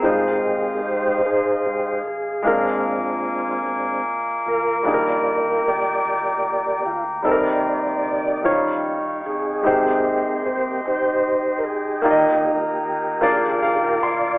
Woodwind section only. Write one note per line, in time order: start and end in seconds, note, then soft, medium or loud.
0.00 2.28 C6 soft
0.05 2.28 D#5 medium
0.05 4.82 F5 medium
0.05 2.28 D#6 medium
2.45 4.83 G#5 soft
2.45 8.27 A#5 medium
2.45 7.22 D6 medium
4.87 13.21 G5 medium
7.22 8.27 C6 soft
8.44 9.63 F5 medium
8.44 9.63 C#6 soft
9.64 12.02 D#5 medium
9.64 12.01 C6 medium
12.04 13.23 D#5 medium
12.04 14.38 A#5 medium
13.24 14.38 D5 medium
13.24 14.38 F5 soft
13.24 14.38 D6 medium